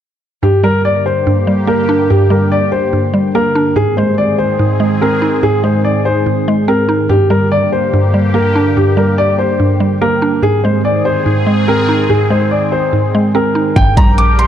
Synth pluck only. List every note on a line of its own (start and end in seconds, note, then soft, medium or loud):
0.43 1.26 G2 loud
0.63 1.46 G3 medium
1.27 2.09 G2 loud
1.47 2.29 G3 medium
1.67 2.72 A#3 medium
1.89 2.93 D4 medium
2.10 2.92 G2 medium
2.30 3.12 G3 medium
2.93 3.76 G2 medium
3.14 3.76 G3 medium
3.35 3.77 A#3 medium
3.55 3.76 D4 medium
3.76 4.58 G#2 medium
3.98 4.79 G#3 medium
4.59 5.42 G#2 medium
4.80 5.62 G#3 medium
5.02 6.06 C4 medium
5.22 6.26 D#4 medium
5.43 6.25 G#2 medium
5.64 6.47 G#3 medium
6.26 7.10 G#2 medium
6.48 7.10 G#3 medium
6.68 7.10 C4 medium
6.89 7.10 D#4 medium
7.10 7.92 G2 loud
7.30 8.13 G3 medium
7.93 8.76 G2 medium
8.14 8.96 G3 medium
8.34 9.39 A#3 medium
8.55 9.60 D4 medium
8.77 9.58 G2 medium
8.97 9.79 G3 medium
9.60 10.43 G2 medium
9.80 10.43 G3 medium
10.02 10.43 A#3 medium
10.22 10.43 D4 medium
10.42 11.25 G#2 medium
10.65 11.45 G#3 medium
11.26 12.08 G#2 medium
11.47 12.29 G#3 medium
11.69 12.73 C4 medium
11.89 12.93 D#4 medium
12.10 12.92 G#2 medium
12.30 13.13 G#3 medium
12.93 13.76 G#2 medium
13.15 13.77 G#3 medium
13.35 13.76 C4 medium
13.55 13.76 D#4 medium
13.76 14.47 G2 loud
13.97 14.47 G3 medium